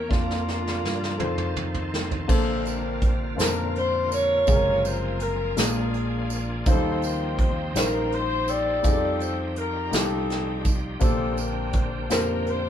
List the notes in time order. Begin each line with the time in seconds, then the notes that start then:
Already playing: E3 A#3 C#4 E4 G4
0.09 F2 F3 A#3 D4 F4 A#4 D5, kick, snare
0.31 snare
0.48 snare
0.67 snare
0.84 G2, snare
1.04 snare
1.18 F2 D#3 F3 C4 F4 G4 A4 C5, mid tom
1.26 A4
1.38 mid tom
1.56 mid tom
1.74 floor tom
1.94 snare
2.11 floor tom
2.28 A#1 A#2 C3 D3 A#3 C4 D4 G#4 A4 C5, kick, crash, tambourine
2.32 F4 A4
2.65 A#4, closed hi-hat, tambourine
3.02 C5, kick, closed hi-hat
3.36 F2 A#3 D4 C5 A5, snare, closed hi-hat, tambourine
3.42 A#4
3.75 C5, closed hi-hat
4.12 F4 A#4 C#5, closed hi-hat, tambourine
4.46 F#1 C3 F3 G#3 A#3 F4 G4 G#4, kick, closed hi-hat, tambourine
4.53 G#4 A#4
4.85 C5, closed hi-hat, tambourine
5.20 A#4, closed hi-hat
5.56 A#1 A#2 F3 G#3 A#3 D4 F4 G#4 A#4, snare, closed hi-hat, tambourine
5.94 closed hi-hat
6.30 closed hi-hat, tambourine
6.66 D#2 D#3 F3 F#3 C4 D#4 F4 G4 A4 C5, kick, closed hi-hat, tambourine
6.73 G3
7.02 A#4, closed hi-hat, tambourine
7.38 C5, kick, closed hi-hat
7.74 A#1 G3 D#4 F4 A#4 C5, snare, closed hi-hat, tambourine
8.12 C5, closed hi-hat
8.48 G4 A4 D5, closed hi-hat, tambourine
8.83 F2 F3 G3 D#4 F4 G4 G#4, kick, closed hi-hat, tambourine
8.90 G3 A4
9.20 C5, closed hi-hat, tambourine
9.56 A#4, closed hi-hat
9.91 C2 G3 C4 D#4 F4 G4 A4, snare, closed hi-hat, tambourine
10.30 snare, closed hi-hat
10.65 kick, closed hi-hat, tambourine
10.99 A#1 A#2 D3 A#3 C4 D4 G4 A4 C5, kick, closed hi-hat, tambourine
11.04 D4
11.37 A#4, closed hi-hat, tambourine
11.73 C5, kick, closed hi-hat
12.10 F2 A#3 D4 G4 A#4 C5, snare, closed hi-hat, tambourine
12.46 C5, closed hi-hat